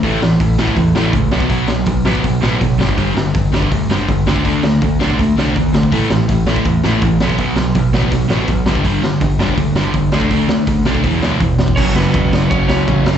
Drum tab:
CC |----------------|----------------|----------------|----------------|
RD |----------------|----------------|----------------|----------------|
HH |o---o---o---o---|o---o---o---o---|o---o---o---o---|o---o---o---o---|
SD |--o---o---o---o-|--o---o---o---o-|--o---o---o---o-|--o---o---o---o-|
BD |o---o--oo---o--o|o---o--oo---o--o|o---o--oo---o--o|o---o--oo---o--o|

CC |----------------|----------------|----------------|----------------|
RD |----------------|----------------|----------------|----------------|
HH |o---o---o---o---|o---o---o---o---|o---o---o---o---|o---o---o---o---|
SD |--o---o---o---o-|--o---o---o---o-|--o---o---o---o-|--o---o---o---o-|
BD |o---o--oo---o--o|o---o--oo---o--o|o---o--oo---o--o|o---o--oo---o--o|

CC |x---------------|
RD |----x---x---x---|
HH |----------------|
SD |--o---o---o---o-|
BD |o---o---o---o---|